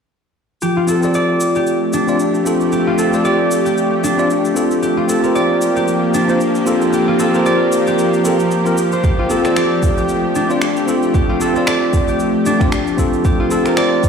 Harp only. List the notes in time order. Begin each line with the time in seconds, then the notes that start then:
0.62 G4
0.77 F4
0.88 A4
1.03 A4
1.15 D5
1.56 G4
1.93 D4
2.72 G4
2.87 F4
2.98 A4
3.13 A4
3.25 D5
3.66 G4
4.04 D4
4.82 G4
4.97 F4
5.09 A4
5.24 A#4
5.35 D5
5.76 G4
6.14 D4
6.93 G4
7.08 F4
7.20 A4
7.34 A#4
7.46 D5
7.87 G4
8.25 A#4
8.93 C5
9.04 G4
9.19 F4
9.30 A4
9.45 A4
9.56 D5
9.98 G4
10.35 D4
11.15 G4
11.29 F4
11.41 A4
11.56 A4
11.67 D5
12.08 G4
12.46 D4
13.25 G4
13.40 F4
13.51 A4
13.66 A#4
13.77 D5